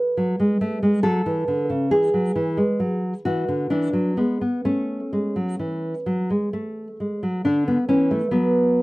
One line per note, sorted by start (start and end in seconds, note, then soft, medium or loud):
0.00 1.00 B4 medium
0.17 0.38 F#3 soft
0.40 0.60 G#3 soft
0.61 0.82 A3 medium
0.83 1.03 G#3 medium
1.03 1.25 F#3 medium
1.03 1.88 A4 medium
1.26 1.47 E3 medium
1.48 1.69 D3 soft
1.70 1.91 C#3 medium
1.91 2.13 E3 soft
1.91 3.21 G#4 medium
2.14 2.35 F#3 soft
2.35 2.57 E3 medium
2.57 2.79 G#3 soft
2.80 3.13 F#3 soft
3.25 3.48 E3 medium
3.25 3.69 F#4 medium
3.48 3.70 D3 soft
3.70 3.93 E3 medium
3.70 4.15 D4 medium
3.93 4.16 F#3 soft
4.17 4.40 G#3 soft
4.17 4.40 B3 soft
4.41 4.64 B3 soft
4.65 4.99 A3 soft
4.65 6.96 C#4 medium
5.13 5.35 G#3 soft
5.36 5.58 F#3 soft
5.59 5.93 E3 soft
6.06 6.29 F#3 soft
6.30 6.52 G#3 soft
6.53 6.87 A3 soft
7.00 7.22 G#3 soft
7.23 7.44 F#3 soft
7.45 7.77 D3 soft
7.45 7.67 D4 medium
7.68 7.88 B3 medium
7.89 8.20 E3 soft
7.89 8.11 C#4 medium
8.11 8.31 A3 medium
8.31 8.82 F#3 soft
8.31 8.82 B3 medium